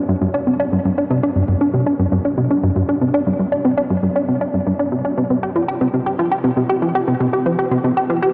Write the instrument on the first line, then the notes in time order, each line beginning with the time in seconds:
analog synth bass
0.09 G2
0.21 G2
0.34 D4
0.47 C3
0.59 D4
0.72 G2
0.85 G2
0.98 D4
1.10 C3
1.23 D4
1.36 G2
1.48 G2
1.61 D4
1.74 C3
1.86 D4
1.99 G2
2.12 G2
2.25 D4
2.37 C3
2.50 D4
2.63 G2
2.76 G2
2.88 D4
3.01 C3
3.14 D4
3.27 G2
3.39 G2
3.52 D4
3.65 C3
3.78 D4
3.90 G2
4.03 G2
4.16 D4
4.28 C3
4.41 D4
4.54 G2
4.67 G2
4.79 D4
4.92 C3
5.05 D4
5.18 C3
5.30 C3
5.43 G4
5.55 F3
5.68 G4
5.81 C3
5.94 C3
6.06 G4
6.19 F3
6.32 G4
6.44 C3
6.57 C3
6.70 G4
6.82 F3
6.95 G4
7.08 C3
7.20 C3
7.33 G4
7.46 F3
7.59 G4
7.71 C3
7.84 C3
7.97 G4
8.10 F3
8.22 G4